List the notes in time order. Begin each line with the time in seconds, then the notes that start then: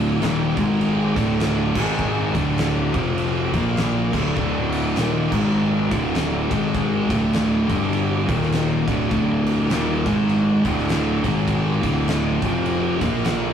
Already playing: D1 D2 A2 D3
0.21 D#1 D#2 A#2 D#3, snare, ride
0.56 G#1 G#2 D#3 G#3, kick, ride
0.81 ride
1.16 D1 D2 A2 D3, kick, ride
1.40 snare, ride
1.75 G#1 G#2 D#3 G#3, kick, crash
1.99 kick
2.35 D1 D2 A2 D3, kick, ride
2.58 snare, ride
2.94 F1 F2 C3 F3, kick, ride
3.18 ride
3.54 A#1 A#2 F3 A#3, kick, ride
3.77 snare, ride
4.13 D1 D2 A2 D3, kick, crash
4.36 D1 D2 A2 D3, kick
4.72 ride
4.96 D#1 D#2 A#2 D#3, snare, ride
5.31 G#1 G#2 D#3 G#3, kick, crash
5.91 D1 D2 A2 D3, kick, ride
6.15 snare, ride
6.51 G#1 G#2 D#3 G#3, kick, ride
6.75 kick, ride
7.09 D1 D2 A2 D3, kick, ride
7.33 snare, ride
7.69 G1 G2 D3 G3, kick, ride
7.93 ride
8.28 D#1 D#2 A#2 D#3, kick, ride
8.42 snare
8.52 snare, ride
8.87 D1 D2 A2 D3, kick, ride
9.11 D1 D2 A2 D3, kick, ride
9.47 ride
9.69 D#1 D#2 A#2 D#3, snare, ride
10.05 G#1 G#2 D#3 G#3, kick, ride
10.29 ride
10.65 D1 D2 A2 D3, kick, ride
10.79 snare
10.89 snare, ride
11.24 G#1 G#2 D#3 G#3, kick, ride
11.48 kick, ride
11.83 D1 D2 A2 D3, kick, ride
12.08 snare, ride
12.42 F1 F2 C3 F3, kick, ride
12.66 ride
13.01 A#1 A#2 F3 A#3, kick, ride
13.25 snare, ride